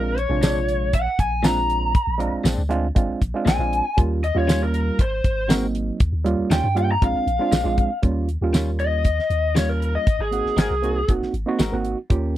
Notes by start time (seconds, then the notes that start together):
Already playing: A#1 G#3 C4 D4 F4 A#4
0.18 C#5, closed hi-hat
0.29 A#1 C3 G#3 D4 F4
0.42 A#2 G#3 C4 D4, snare, closed hi-hat, tambourine
0.68 closed hi-hat
0.93 F#5, kick, closed hi-hat
1.19 A#1 G#5, kick, closed hi-hat
1.43 A#2 G#3 C4 D4 F4 A#5, snare, closed hi-hat, tambourine
1.70 closed hi-hat
1.95 kick, closed hi-hat
2.07 A#1
2.18 G#3 C4 D4 F4, closed hi-hat
2.32 A#1
2.44 A#1 A#2 G#3 C4 D4, snare, closed hi-hat, tambourine
2.58 D2
2.69 G#3 C4 D4 F4, closed hi-hat
2.95 G#1 G#3 C4 D4 F4, kick, closed hi-hat
3.09 A#1
3.21 A#1, kick, closed hi-hat
3.34 G#3 C4 D4 F4
3.45 A#1 A#2 G#3 C4 D4 G#5, snare, closed hi-hat, tambourine
3.59 A#1 G#3 C4 D4 F4
3.73 closed hi-hat
3.97 D#2 G3 A#3 C#4 F4, kick, closed hi-hat
4.24 D#5, closed hi-hat
4.35 D#2 G3 A#3 C#4 F4 C#5
4.47 D#3 G3 C#4 F4, snare, closed hi-hat, tambourine
4.63 A#4
4.74 closed hi-hat
4.99 G#1 C5, kick, closed hi-hat
5.24 G#1, kick, closed hi-hat
5.48 F#3 G#3 A#3 C4 D#4 F#4 A#4, snare, closed hi-hat, tambourine
5.75 closed hi-hat
6.00 D#2, kick, closed hi-hat
6.12 D#2
6.24 G3 A#3 C#4 F4, closed hi-hat
6.38 D#2
6.50 D#2 D#3 G3 C#4 F4 G5, snare, closed hi-hat, tambourine
6.64 G2
6.75 G3 A#3 C#4 F4 G5, closed hi-hat
6.92 A#5
7.02 A#1 G#3 C4 D4 F4 F5, kick, closed hi-hat
7.14 A#1
7.27 A#1, closed hi-hat
7.39 G#3 C4 D4 F4
7.52 A#1 A#2 G#3 C4 D4, snare, closed hi-hat, tambourine
7.64 A#1 G#3 C4 D4 F4
7.78 kick, closed hi-hat
8.02 D#2 G3 A#3 C#4 F4, kick, closed hi-hat
8.29 closed hi-hat
8.41 D#2 G3 A#3 C#4 F4
8.53 D#3 G3 C#4 F4, snare, closed hi-hat, tambourine
8.79 D#5, closed hi-hat
9.05 kick, closed hi-hat
9.19 snare
9.30 D#2, closed hi-hat
9.55 D#3 G3 A#3 C#4 F4 C#5, snare, closed hi-hat, tambourine
9.69 A#4
9.82 closed hi-hat
9.95 D#5
10.07 G#1, kick, closed hi-hat
10.19 G#1 G#4
10.31 A#3 C4 D#4 F#4, closed hi-hat
10.45 G#1, snare
10.57 G#1 G#3 C4 F#4 G#4 A#4, snare, closed hi-hat, tambourine
10.70 C2
10.82 A#3 C4 D#4 F#4, closed hi-hat
11.08 F#1 A#3 C4 D#4 F#4, kick, closed hi-hat
11.22 G#1, snare
11.33 G#1, closed hi-hat
11.46 A#3 C4 D#4 F#4
11.59 G#1 G#3 C4 F#4 A#4, snare, closed hi-hat, tambourine
11.72 G#1 A#3 C4 D#4 F#4
11.85 closed hi-hat
12.10 D#2 A#3 C#4 F4 G4, kick, closed hi-hat